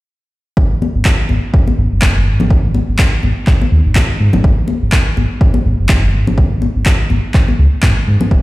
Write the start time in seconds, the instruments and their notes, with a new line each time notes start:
0.57 sub bass G#1, kick
0.82 high conga
0.95 sub bass G#1
1.05 kick, clap
1.29 sub bass G#1, high conga
1.54 kick
1.67 high conga
1.78 sub bass G#1
1.91 sub bass F#1
2.02 kick, clap, high conga
2.26 sub bass G#1
2.40 high conga, low conga
2.51 kick
2.75 high conga
2.88 sub bass G#1
2.99 kick, clap
3.23 sub bass G#1, high conga
3.47 kick, clap
3.62 high conga
3.72 sub bass D#2
3.85 sub bass G#1
3.95 kick, clap, high conga
4.20 sub bass G#2
4.33 sub bass G#1, high conga, low conga
4.44 sub bass G#1, kick
4.68 high conga
4.82 sub bass G#1
4.92 kick, clap
5.17 sub bass G#1, high conga
5.41 kick
5.54 high conga
5.65 sub bass G#1
5.79 sub bass F#1
5.89 kick, clap, high conga
6.13 sub bass G#1
6.27 high conga, low conga
6.38 kick
6.62 high conga
6.76 sub bass G#1
6.86 kick, clap
7.10 sub bass G#1, high conga
7.34 kick, clap
7.48 high conga
7.59 sub bass C#2
7.83 sub bass G#2, kick, clap, high conga
8.07 sub bass G#2
8.21 high conga, low conga
8.31 sub bass E1, kick